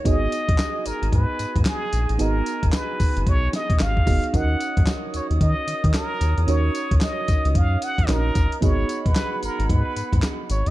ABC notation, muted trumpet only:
X:1
M:4/4
L:1/16
Q:"Swing 16ths" 1/4=112
K:Abdor
V:1 name="Muted trumpet"
e6 B2 c4 A4 | B4 c4 d2 e2 f4 | g4 z2 d2 e4 B4 | d4 e4 f2 g2 B4 |
d3 c3 B2 c4 z2 d z |]